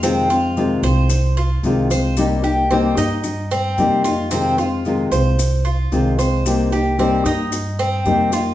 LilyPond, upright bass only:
\new Staff \with { instrumentName = "Upright bass" } { \clef bass \time 4/4 \key c \minor \tempo 4 = 112 f,4. c,4. c,4~ | c,4. g,4. f,4~ | f,4. c,4. c,4~ | c,4. g,4. f,4 | }